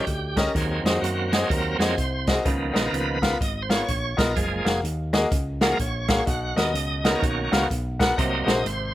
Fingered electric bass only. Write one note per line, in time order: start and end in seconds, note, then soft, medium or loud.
0.07 0.48 D2 medium
0.55 0.80 D#2 medium
0.84 0.99 F2 medium
1.02 1.43 F#2 medium
1.50 1.75 D#2 medium
1.79 1.95 F2 medium
1.98 2.38 C2 medium
2.45 2.71 C#2 loud
2.75 2.91 A#1 medium
2.93 3.34 C#2 medium
3.41 3.81 G#1 medium
3.89 4.14 A#1 medium
4.18 4.34 B1 medium
4.37 4.62 F#1 medium
4.65 4.81 F1 medium
4.83 5.24 D#2 medium
5.31 5.72 C#2 medium
5.80 6.20 A#1 medium
6.27 6.52 B1 loud
6.56 6.72 D#2 medium
6.74 7.15 C#2 medium
7.22 7.47 B1 medium
7.52 7.68 C#2 medium
7.71 8.11 B1 medium
8.18 8.43 C2 loud
8.47 8.62 A#1 medium
8.65 8.94 G#1 medium